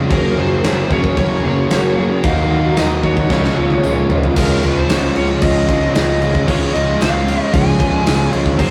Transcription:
Already playing: overdriven electric guitar F3 G#3 C#4, clean electric guitar F3 C#4 G#4, string machine G#5
0.09 picked electric bass F#1, overdriven electric guitar F#2 C#3, clean electric guitar F#3 A#3 C#4 G#4, string machine C#4 F#4 A#4, lead electric guitar A#4, kick, crash
0.14 overdriven electric guitar F#3
0.35 picked electric bass F#1, clean electric guitar A#3 C#4 G#4, lead electric guitar C5
0.40 overdriven electric guitar F#3
0.62 picked electric bass F#1, overdriven electric guitar C#3, clean electric guitar F#3 A#3 C#4 G#4, snare, tambourine, crash
0.66 overdriven electric guitar F#3
0.90 picked electric bass F#1, overdriven electric guitar F#2 C#3 F#3, clean electric guitar A#3 C#4 G#4, lead electric guitar C#5, kick
1.04 kick
1.17 picked electric bass F#1, overdriven electric guitar C#3, clean electric guitar F#3 A#3 C#4 G#4, lead electric guitar C#5, kick, crash
1.43 picked electric bass F#1, clean electric guitar F#3 A#3 C#4 G#4
1.70 picked electric bass F#1, overdriven electric guitar F#2 C#3, clean electric guitar F#3 A#3 C#4 G#4, snare, tambourine, crash
1.98 overdriven electric guitar F#3, clean electric guitar A#3 C#4 G#4
2.24 picked electric bass D#2, clean electric guitar D#3 F#3 A#3 D#4 F#4, overdriven electric guitar F#3, string machine A#4 D#5 A#5, lead electric guitar F5, kick, crash
2.50 picked electric bass D#2, overdriven electric guitar F#3, clean electric guitar A#3 D#4 F#4
2.77 picked electric bass D#2, clean electric guitar D#3 A#3 D#4 F#4, overdriven electric guitar F#3, lead electric guitar D#5, snare, tambourine, crash
3.03 overdriven electric guitar D#3 F#3, clean electric guitar A#3 D#4 F#4, lead electric guitar C#5, kick
3.17 kick
3.29 picked electric bass C#2, clean electric guitar C#3 F3 G#3 C#4, string machine F4 G#4 C#5 G#5, kick, snare
3.34 clean electric guitar F4
3.44 snare
3.57 picked electric bass C#2, clean electric guitar C#3 F3 G#3 C#4 F4
3.70 high tom
3.83 picked electric bass C#2, overdriven electric guitar C#3, clean electric guitar F3 G#3 C#4 F4, mid tom, tambourine
4.09 picked electric bass C#2, overdriven electric guitar F3, clean electric guitar C#4 F4, floor tom
4.14 clean electric guitar G#3
4.23 floor tom
4.36 picked electric bass C#2, clean electric guitar C#3 F3 G#3 C#4 F4, lead electric guitar A#4, kick, crash
4.62 picked electric bass C#2, overdriven electric guitar F3, clean electric guitar G#3 C#4 F4, lead electric guitar C5, crash
4.89 picked electric bass C#2, clean electric guitar C#3 F3 G#3 C#4 F4, snare, tambourine, crash
5.16 picked electric bass C#2, overdriven electric guitar C#3 F3, clean electric guitar G#3 C#4 F4, lead electric guitar C#5, crash
5.42 picked electric bass C#2, overdriven electric guitar C#3, clean electric guitar F3 G#3 C#4 F4, lead electric guitar D#5, kick, crash
5.68 picked electric bass C#2, clean electric guitar C#3 F3 G#3 C#4 F4, kick, crash
5.94 picked electric bass C#2, overdriven electric guitar C#3, clean electric guitar F3 G#3 C#4 F4, lead electric guitar D#5, snare, tambourine, crash
6.21 overdriven electric guitar F3, clean electric guitar G#3 C#4 F4, crash
6.35 kick
6.47 picked electric bass C#2, clean electric guitar C#3 F3 G#3 C#4 F4, lead electric guitar C#5, kick, crash
6.73 picked electric bass C#2, overdriven electric guitar F3, clean electric guitar G#3 C#4 F4, lead electric guitar D#5, crash
7.00 picked electric bass C#2, clean electric guitar C#3 F3 G#3 C#4 F4, lead electric guitar F5, snare, tambourine, crash
7.26 overdriven electric guitar C#3 F3, clean electric guitar G#3 C#4 F4, crash
7.45 lead electric guitar D#5
7.52 picked electric bass C#2, overdriven electric guitar C#3, clean electric guitar F3 G#3 C#4 F4, lead electric guitar G#5, kick, crash
7.79 picked electric bass C#2, clean electric guitar C#3 F3 G#3 C#4 F4, kick, crash
8.05 picked electric bass C#2, overdriven electric guitar C#3, clean electric guitar F3 G#3 C#4 F4, snare, tambourine, crash
8.30 picked electric bass C#2, clean electric guitar G#3 C#4 F4, crash
8.35 overdriven electric guitar F3
8.46 kick
8.57 picked electric bass F#1, overdriven electric guitar F#2 C#3, clean electric guitar F#3 A#3 C#4 G#4, lead electric guitar C5, kick, crash
8.62 overdriven electric guitar F#3

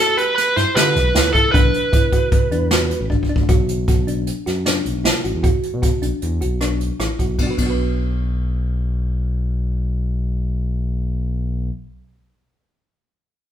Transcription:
Already playing: synth arpeggio sound F#4, lead electric guitar A4
0.17 synth arpeggio sound G4, lead electric guitar B4, closed hi-hat
0.36 lead electric guitar B4, snare, closed hi-hat
0.56 analog synth bass G2, synth arpeggio sound E4, lead electric guitar C5, snare, closed hi-hat
0.76 analog synth bass D3, synth arpeggio sound G4, lead electric guitar B4, snare, closed hi-hat
0.95 analog synth bass B1, snare, closed hi-hat
1.15 analog synth bass D2, synth arpeggio sound E4, snare, closed hi-hat
1.33 synth arpeggio sound E4, lead electric guitar A4, kick, closed hi-hat
1.52 analog synth bass B1, synth arpeggio sound D4, lead electric guitar B4, kick, closed hi-hat
1.74 closed hi-hat
1.92 synth arpeggio sound E4, kick, closed hi-hat
2.12 synth arpeggio sound F#4, kick, closed hi-hat
2.32 kick, closed hi-hat
2.51 analog synth bass E2, synth arpeggio sound D4, closed hi-hat
2.71 synth arpeggio sound F#4, snare, closed hi-hat
2.91 closed hi-hat
3.00 analog synth bass A1
3.10 synth arpeggio sound D4, kick
3.23 kick
3.29 synth arpeggio sound D4
3.36 analog synth bass D2, kick
3.49 analog synth bass B1, synth arpeggio sound F#4, kick, closed hi-hat
3.68 closed hi-hat
3.88 synth arpeggio sound F#4, kick, closed hi-hat
4.07 synth arpeggio sound D4, closed hi-hat
4.27 closed hi-hat
4.46 analog synth bass F#2, synth arpeggio sound F#4, snare, closed hi-hat
4.66 synth arpeggio sound D4, snare, closed hi-hat
4.85 analog synth bass B1, closed hi-hat
4.95 analog synth bass B1
5.04 synth arpeggio sound E4, snare, closed hi-hat
5.24 analog synth bass A1, synth arpeggio sound F#4, closed hi-hat
5.34 analog synth bass E2
5.43 synth arpeggio sound F#4, kick, closed hi-hat
5.63 closed hi-hat
5.73 analog synth bass B2
5.82 synth arpeggio sound F#4, kick, closed hi-hat
6.02 analog synth bass B1, synth arpeggio sound D4, closed hi-hat
6.22 analog synth bass E2, closed hi-hat
6.41 analog synth bass B1, synth arpeggio sound F#4, closed hi-hat
6.61 synth arpeggio sound D4, cross-stick, closed hi-hat
6.81 closed hi-hat
6.99 analog synth bass A1, synth arpeggio sound E4, cross-stick, closed hi-hat
7.19 analog synth bass B1, synth arpeggio sound F#4, kick, closed hi-hat
7.38 analog synth bass B1, synth arpeggio sound B3, kick, ride
7.43 synth arpeggio sound D4
7.47 synth arpeggio sound F#4 B4
7.58 analog synth bass B1, synth arpeggio sound B3, kick, ride
7.62 synth arpeggio sound D4
7.66 synth arpeggio sound F#4
7.70 synth arpeggio sound B4

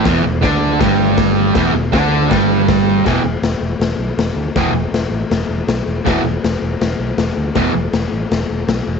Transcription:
0.05 fingered electric bass E1, distorted electric guitar E2 E3, kick, snare, crash
0.24 fingered electric bass E1, distorted electric guitar E2
0.42 fingered electric bass D2, distorted electric guitar D3 D4, kick, snare, crash
0.80 fingered electric bass G1, distorted electric guitar G2 G3, kick, snare, crash
1.17 kick, snare, crash
1.55 fingered electric bass E1, distorted electric guitar E2 E3, kick, snare, crash
1.73 fingered electric bass E1, distorted electric guitar E2
1.93 fingered electric bass D2, distorted electric guitar D3 D4, kick, snare, crash
2.29 fingered electric bass G1, distorted electric guitar G2 G3, kick, snare, crash
2.68 kick, snare, crash
3.05 fingered electric bass E1, distorted electric guitar E2 B2 E3, kick, snare, crash
3.24 fingered electric bass E1
3.42 fingered electric bass E1, snare, crash
3.60 fingered electric bass E1
3.79 fingered electric bass E1, snare, crash
3.97 fingered electric bass B1
4.17 fingered electric bass E1, snare, crash
4.35 fingered electric bass D2
4.56 fingered electric bass E1, distorted electric guitar E2 B2 E3, kick, snare, crash
4.72 fingered electric bass E1
4.91 fingered electric bass E1, snare, crash
5.10 fingered electric bass A1
5.30 fingered electric bass E1, snare, crash
5.48 fingered electric bass E1
5.67 fingered electric bass B1, snare, crash
5.86 fingered electric bass E1
6.05 fingered electric bass E1, distorted electric guitar E2 B2 E3, kick, snare, crash
6.24 fingered electric bass E1
6.43 fingered electric bass E1, snare, crash
6.61 fingered electric bass E1
6.81 fingered electric bass E1, snare, crash
6.98 fingered electric bass B1
7.17 fingered electric bass E1, snare, crash
7.36 fingered electric bass D2
7.55 fingered electric bass E1, distorted electric guitar E2 B2 E3, kick, snare, crash
7.75 fingered electric bass E1
7.92 fingered electric bass E1, snare, crash
8.12 fingered electric bass A1
8.31 fingered electric bass E1, snare, crash
8.50 fingered electric bass E1
8.67 fingered electric bass B1, snare, crash
8.86 fingered electric bass E1

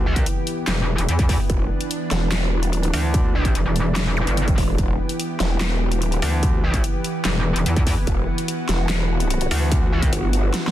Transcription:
Already playing: wobble bass D2, analog synth pad E3 B3 G4
0.08 wobble bass C#2
0.16 kick, closed hi-hat
0.26 closed hi-hat
0.47 closed hi-hat
0.67 wobble bass E1, snare, clap, closed hi-hat
0.98 wobble bass E1, closed hi-hat
1.09 wobble bass E2, closed hi-hat
1.19 kick, closed hi-hat
1.29 kick, open hi-hat
1.50 wobble bass E1, analog synth pad D4, kick, closed hi-hat
1.81 closed hi-hat
1.91 closed hi-hat
2.11 wobble bass E1, snare, closed hi-hat
2.32 snare, clap, closed hi-hat
2.63 closed hi-hat
2.68 wobble bass D#1
2.73 closed hi-hat
2.83 closed hi-hat
2.94 wobble bass D2, open hi-hat
3.14 kick, closed hi-hat
3.45 kick, closed hi-hat
3.55 wobble bass E1, closed hi-hat
3.66 wobble bass E1
3.76 closed hi-hat
3.96 snare, clap, closed hi-hat
4.17 zap
4.27 wobble bass G1, closed hi-hat
4.37 closed hi-hat
4.48 kick, closed hi-hat
4.58 wobble bass E1, kick, open hi-hat
4.78 wobble bass E1, analog synth pad G4, kick, closed hi-hat
5.09 closed hi-hat
5.20 closed hi-hat
5.40 wobble bass E1, snare, closed hi-hat
5.61 snare, clap, closed hi-hat
5.92 closed hi-hat
5.97 wobble bass D#1
6.02 closed hi-hat
6.12 closed hi-hat
6.22 wobble bass D2, open hi-hat
6.43 kick, closed hi-hat
6.74 kick, closed hi-hat
6.84 closed hi-hat
7.04 closed hi-hat
7.25 wobble bass E1, snare, clap, closed hi-hat
7.56 wobble bass E1, closed hi-hat
7.66 wobble bass E2, closed hi-hat
7.76 kick, closed hi-hat
7.87 kick, open hi-hat
8.07 wobble bass E1, analog synth pad F#4, kick, closed hi-hat
8.38 closed hi-hat
8.48 closed hi-hat
8.69 wobble bass E1, snare, closed hi-hat
8.89 snare, clap, closed hi-hat
9.20 closed hi-hat
9.30 closed hi-hat
9.41 closed hi-hat
9.51 wobble bass D2, open hi-hat
9.72 kick, closed hi-hat
9.94 wobble bass C#2
10.03 kick, closed hi-hat
10.13 wobble bass G1, closed hi-hat
10.33 closed hi-hat
10.54 snare, closed hi-hat
10.67 snare

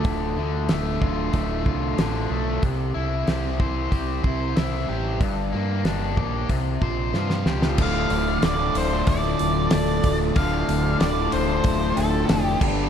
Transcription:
Already playing: distorted electric guitar A2 D3 A3 D4 F4, overdriven electric guitar D3 F4
0.04 fingered electric bass D1, distorted electric guitar D2, kick, open hi-hat
0.37 fingered electric bass D2, distorted electric guitar D3
0.69 fingered electric bass D1, overdriven electric guitar A3, distorted electric guitar F4, snare, open hi-hat
1.01 fingered electric bass D1, distorted electric guitar D3, overdriven electric guitar F4, kick
1.33 fingered electric bass D1, distorted electric guitar A2, overdriven electric guitar A3, kick, open hi-hat
1.66 fingered electric bass C2, distorted electric guitar D3, overdriven electric guitar F4, kick
1.98 fingered electric bass A1, overdriven electric guitar D3, distorted electric guitar F4, snare, open hi-hat
2.30 fingered electric bass B1, distorted electric guitar A3
2.62 fingered electric bass C2, distorted electric guitar C3, kick, open hi-hat
2.95 fingered electric bass C2, distorted electric guitar E4
3.27 fingered electric bass C2, overdriven electric guitar G4, distorted electric guitar C5, snare, open hi-hat
3.59 distorted electric guitar E4, overdriven electric guitar C5, kick
3.91 fingered electric bass C2, distorted electric guitar C4, overdriven electric guitar G4, kick, open hi-hat
4.23 fingered electric bass C2, distorted electric guitar E4, overdriven electric guitar C5, kick
4.56 fingered electric bass C2, overdriven electric guitar E4, distorted electric guitar C5, snare, open hi-hat
4.88 fingered electric bass A1, distorted electric guitar G4
5.20 fingered electric bass G1, distorted electric guitar G2, kick, open hi-hat
5.53 fingered electric bass G2, distorted electric guitar A#3
5.84 fingered electric bass G1, overdriven electric guitar D4, distorted electric guitar G4, snare, open hi-hat
6.16 fingered electric bass A#1, distorted electric guitar A#3, overdriven electric guitar G4, kick
6.49 fingered electric bass C2, distorted electric guitar C3, kick, open hi-hat
6.81 fingered electric bass A#1, distorted electric guitar F4, overdriven electric guitar C5, kick
7.13 fingered electric bass G2, overdriven electric guitar F4, distorted electric guitar C5, snare
7.30 snare
7.45 fingered electric bass C#2, tonewheel organ B3, distorted electric guitar G4, snare
7.52 tonewheel organ C4 D4
7.57 tonewheel organ E4 F4
7.62 tonewheel organ G4 A4, snare
7.67 tonewheel organ B4 C5
7.73 tonewheel organ D5 E5
7.78 fingered electric bass D1, distorted electric guitar D2 A2 D3 A3 F4, tonewheel organ D4 F4 A4 D5, lead electric guitar F5, kick, crash
8.10 fingered electric bass D1, muted distorted electric guitar stroke, open hi-hat
8.42 fingered electric bass D1, distorted electric guitar D2 A2 D3 A3 F4, lead electric guitar D5, snare, open hi-hat
8.60 distorted electric guitar D3 A3 F4
8.75 fingered electric bass D1, distorted electric guitar A2 D3 A3 F4, lead electric guitar C5, open hi-hat
8.91 distorted electric guitar D3 A3 F4
9.07 fingered electric bass D1, lead electric guitar D5, kick, open hi-hat
9.22 distorted electric guitar D3 A3 F4
9.39 fingered electric bass D1, distorted electric guitar A2 D3 A3 F4, open hi-hat
9.71 fingered electric bass D1, distorted electric guitar D2 A2 D3 A3 F4, lead electric guitar D5, snare, open hi-hat
9.86 distorted electric guitar D3 A3 F4
10.03 fingered electric bass D1, distorted electric guitar A2 D3 A3 F4, kick, open hi-hat
10.19 distorted electric guitar D3 A3 F4
10.35 fingered electric bass D1, distorted electric guitar D2 A2 D3 A3 F4, tonewheel organ D4 F4 A4 D5, lead electric guitar F5, kick, open hi-hat
10.68 fingered electric bass D1, muted distorted electric guitar stroke, open hi-hat
11.00 fingered electric bass D1, distorted electric guitar D2 A2 D3 A3 F4, lead electric guitar D5, snare, open hi-hat
11.17 distorted electric guitar D3 A3 F4
11.32 fingered electric bass D1, distorted electric guitar A2 D3 A3 F4, lead electric guitar C5, open hi-hat
11.49 distorted electric guitar D3 A3 F4
11.64 fingered electric bass D1, kick, open hi-hat
11.80 distorted electric guitar D3 A3 F4
11.96 fingered electric bass D1, distorted electric guitar A2 D3 A3 F4, lead electric guitar A4, open hi-hat
12.27 fingered electric bass F1, distorted electric guitar D2 A2 D3 A3 F4, snare, open hi-hat
12.42 distorted electric guitar D3 A3 F4, lead electric guitar G4
12.58 fingered electric bass G1, distorted electric guitar G2 D3 G3 B3 D4 G4, tonewheel organ D4 G4 B4 D5, kick, crash
12.75 distorted electric guitar G3 B3 D4 G4

